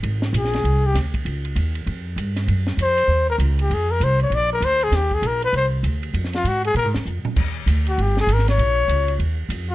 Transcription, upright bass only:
X:1
M:4/4
L:1/8
Q:"Swing" 1/4=196
K:Eb
V:1 name="Upright bass" clef=bass
A,,,2 B,,,2 C,,2 D,,2 | _D,,2 E,,2 F,,2 G,,2 | _G,,2 F,,2 E,,2 _D,,2 | F,,2 C,,2 B,,,2 D,,2 |
E,,2 B,,,2 C,,2 D,,2 | F,,2 A,,2 (3B,, A,, F,, F,, z | E,,2 D,,2 G,,,2 A,,,2 | B,,,2 _D,,2 E,,2 F,,2 |]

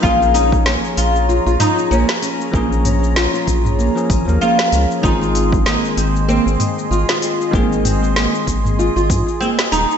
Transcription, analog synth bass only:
X:1
M:4/4
L:1/16
Q:"Swing 16ths" 1/4=96
K:Bbm
V:1 name="Analog synth bass" clef=bass
B,,,4- B,,, z B,,,3 B,,, z2 B,,, z3 | B,,,4- B,,, z B,,,3 z A,,, E,, z2 D,, z | A,,,4- A,,, z A,,,3 A,,, z2 A,,, z3 | A,,,4- A,,, z A,,,3 A,,, A,, z3 E,,, z |]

